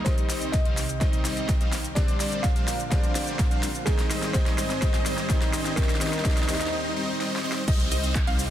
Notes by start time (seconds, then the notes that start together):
Already playing: G4
0.04 C2 C3 D#3 G3 C4 D#4 C5 G5, kick, snare, closed hi-hat, riser, shaker
0.18 closed hi-hat, shaker
0.30 G3 C4 D#4 C5 D#5, snare, open hi-hat, shaker
0.42 closed hi-hat, shaker
0.52 D#5, kick, snare, closed hi-hat, shaker
0.65 G3 C4 D#4 C5 F5, closed hi-hat
0.77 snare, open hi-hat, shaker
0.89 closed hi-hat, shaker
1.00 D#3 G3 C4 D#4 C5 D#5, kick, snare, closed hi-hat, shaker
1.13 closed hi-hat, shaker
1.25 G3 C4 D#4 C5 D#5, snare, open hi-hat, shaker
1.37 closed hi-hat, shaker
1.49 kick, snare, closed hi-hat, shaker
1.61 G3 C4 D#4 C5 F5, closed hi-hat, shaker
1.73 snare, open hi-hat, shaker
1.84 closed hi-hat, shaker
1.95 A#2 D3 F3 G3 C4 D4 A#4 C5 D5 F5, kick, snare, closed hi-hat, shaker
2.08 closed hi-hat, shaker
2.20 G3 C4 D4 C5 D5, snare, open hi-hat, shaker
2.32 closed hi-hat, shaker
2.43 F5, kick, snare, closed hi-hat, shaker
2.56 G3 C4 D4 C5 F5, closed hi-hat, shaker
2.68 snare, open hi-hat, shaker
2.80 closed hi-hat, shaker
2.90 D3 G3 C4 D4 C5 D5 F5, kick, snare, closed hi-hat, shaker
3.04 closed hi-hat, shaker
3.15 G3 C4 D4 C5 D5, snare, open hi-hat, shaker
3.27 closed hi-hat, shaker
3.39 kick, snare, closed hi-hat, shaker
3.51 G3 C4 D4 C5 F5, closed hi-hat, shaker
3.63 snare, open hi-hat, shaker
3.75 closed hi-hat, shaker
3.85 G#2 D#3 G3 G#3 C4 D#4 G#4 C5 D#5 G#5, kick, snare, closed hi-hat, shaker
3.99 snare, closed hi-hat, shaker
4.11 G3 C4 D#4 C5 D#5, snare, open hi-hat, shaker
4.23 snare, closed hi-hat, shaker
4.33 D#3 G3 C4 D#4 C5 D#5, kick, snare, closed hi-hat, shaker
4.46 snare, closed hi-hat
4.58 G3 C4 D#4 C5 D#5, snare, open hi-hat, shaker
4.70 snare, closed hi-hat, shaker
4.81 D#3 G3 C4 D#4 C5 D#5, kick, snare, closed hi-hat, shaker
4.94 snare, closed hi-hat, shaker
5.06 G3 C4 D#4 C5 D#5, snare, open hi-hat, shaker
5.18 snare, closed hi-hat, shaker
5.29 D#3 G3 C4 D#4, kick, snare, closed hi-hat, shaker
5.42 snare, closed hi-hat, shaker
5.54 G3 C4 D#4 C5 D#5, snare, open hi-hat, shaker
5.65 snare, closed hi-hat, shaker
5.76 D#2 D#3 G3 A#3 C4 D#4 G4 A#4, kick, snare, closed hi-hat, shaker
5.83 snare
5.89 snare, closed hi-hat, shaker
5.95 snare
6.00 D#3 G3 C4 D#4 C5 D#5, snare, open hi-hat, shaker
6.07 snare
6.13 snare, closed hi-hat, shaker
6.19 snare
6.23 D#3 G3 C4 D#4 D#5, kick, snare, closed hi-hat, shaker
6.31 snare
6.37 snare, closed hi-hat, shaker
6.43 snare
6.48 D#3 G3 C4 D#4 C5 D#5, snare, open hi-hat, shaker
6.55 snare
6.61 snare, closed hi-hat, shaker
6.67 snare
6.73 G3 C4 D#4 C5 D#5
6.96 G3 C4 D#4 C5 D#5
7.20 G3 C4 D#4 C5 D#5, snare
7.36 snare
7.44 G3 C4 D#4 C5 D#5
7.52 snare
7.68 C2 G3 C4 D#4 G4 C5 D#5, kick, closed hi-hat, crash, downlifter, shaker
7.80 closed hi-hat, shaker
7.92 C2 G3 C4 D#4 C5 D#5, open hi-hat, shaker
8.04 closed hi-hat, shaker
8.15 kick, clap, closed hi-hat, shaker
8.27 C2 G3 C4 D#4 C5 F5, closed hi-hat
8.39 open hi-hat, shaker